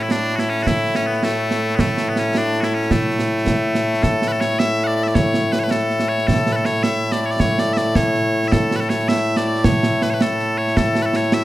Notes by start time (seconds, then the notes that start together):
Already playing: A2 A3 E4
0.03 E4
0.11 D4, snare
0.29 snare
0.36 E4 F#4, snare
0.50 C#4
0.63 F#4, concert bass drum, snare
0.67 E4
0.86 snare
0.95 C#4, snare
1.06 B3
1.14 B3, snare
1.23 A3, snare
1.51 snare
1.70 snare
1.76 A3 B3, concert bass drum, snare
1.97 snare
2.09 B3
2.16 C#4, snare
2.35 D4, snare
2.54 snare
2.61 E4 F#4, snare
2.74 C#4
2.82 snare
2.91 A3, concert bass drum, snare
3.10 snare
3.19 snare
3.38 snare
3.47 concert bass drum, snare
3.75 snare
3.94 snare
4.03 A4, concert bass drum, snare
4.22 snare
4.28 B4, snare
4.32 A4
4.40 C#5, snare
4.50 snare
4.59 E5, snare
4.84 D5 F#5
4.95 D5
5.04 E5, snare
5.08 D5
5.15 C#5, concert bass drum, snare
5.34 snare
5.52 B4, snare
5.59 C#5
5.64 B4
5.71 A4, snare
5.90 snare
6.00 snare
6.09 C#5
6.18 snare
6.27 A4, concert bass drum, snare
6.46 snare
6.52 A4 B4, snare
6.65 C#5, snare
6.75 snare
6.83 E5, snare
7.12 D5, snare
7.21 D5
7.26 C#5
7.31 D5, snare
7.40 C#5, concert bass drum, snare
7.58 D5, snare
7.73 E5, snare
7.78 D5
7.95 C#5, concert bass drum, snare
8.15 snare
8.43 snare
8.48 E5
8.52 A4, concert bass drum, snare
8.71 snare
8.76 B4
8.80 A4, snare
8.89 C#5, snare
9.00 snare
9.09 E5, snare
9.36 D5, snare
9.45 D5
9.55 snare
9.64 C#5, concert bass drum, snare
9.83 snare
10.02 B4, snare
10.10 B4 C#5
10.21 A4, snare
10.39 snare
10.58 C#5
10.68 snare
10.77 A4, concert bass drum, snare
10.95 snare
11.02 A4 B4
11.13 C#5, snare
11.23 snare
11.32 E5, snare